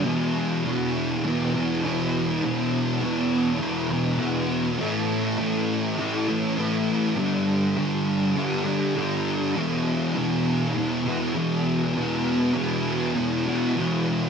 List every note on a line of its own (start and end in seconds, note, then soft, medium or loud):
0.04 0.63 E2 medium
0.04 0.64 B2 medium
0.04 0.66 E3 medium
0.64 1.23 E2 medium
0.64 1.24 B2 medium
0.64 1.26 E3 medium
1.24 1.82 E2 medium
1.24 1.55 B2 medium
1.24 1.54 E3 loud
1.54 1.83 B2 medium
1.54 1.86 E3 medium
1.83 2.41 E2 medium
1.83 2.43 B2 medium
1.83 2.45 E3 medium
2.42 3.00 E2 medium
2.42 3.01 B2 medium
2.42 3.04 E3 medium
3.01 3.58 E2 medium
3.01 3.59 B2 medium
3.01 3.61 E3 medium
3.59 4.17 E2 medium
3.59 3.91 B2 medium
3.59 3.88 E3 medium
3.90 4.19 B2 medium
3.90 4.20 E3 medium
4.19 4.77 E2 medium
4.19 4.78 B2 medium
4.19 4.79 E3 medium
4.79 5.37 A2 medium
4.79 5.38 E3 medium
4.79 5.41 A3 loud
5.38 5.96 A2 medium
5.38 5.98 E3 medium
5.38 5.99 A3 medium
5.98 6.56 A2 medium
5.98 6.30 E3 medium
5.98 6.27 A3 medium
6.28 6.57 E3 medium
6.28 6.58 A3 medium
6.57 7.16 A2 medium
6.57 7.16 E3 medium
6.57 7.17 A3 medium
7.15 7.75 G2 medium
7.15 7.77 D3 medium
7.15 7.78 G3 medium
7.77 8.35 G2 medium
7.77 8.37 D3 medium
7.77 8.37 G3 medium
8.36 8.95 G2 medium
8.36 8.67 D3 medium
8.36 8.64 G3 medium
8.65 8.96 D3 medium
8.65 8.98 G3 medium
8.96 9.55 G2 medium
8.96 9.55 D3 medium
8.96 9.56 G3 medium
9.56 10.15 E2 medium
9.56 10.16 B2 medium
9.56 10.18 E3 medium
10.16 10.74 E2 medium
10.16 10.76 B2 medium
10.16 10.78 E3 medium
10.75 11.33 E2 medium
10.75 11.07 B2 medium
10.75 11.05 E3 medium
11.05 11.34 B2 medium
11.05 11.37 E3 medium
11.34 11.93 E2 medium
11.34 11.95 B2 medium
11.34 11.96 E3 medium
11.94 12.52 E2 medium
11.94 12.54 B2 medium
11.94 12.56 E3 medium
12.53 13.14 E2 medium
12.53 13.16 B2 medium
12.53 13.17 E3 medium
13.15 13.75 E2 medium
13.15 13.47 B2 medium
13.15 13.45 E3 medium
13.46 13.76 B2 medium
13.46 13.78 E3 medium
13.76 14.29 E2 medium
13.76 14.29 B2 medium
13.76 14.29 E3 medium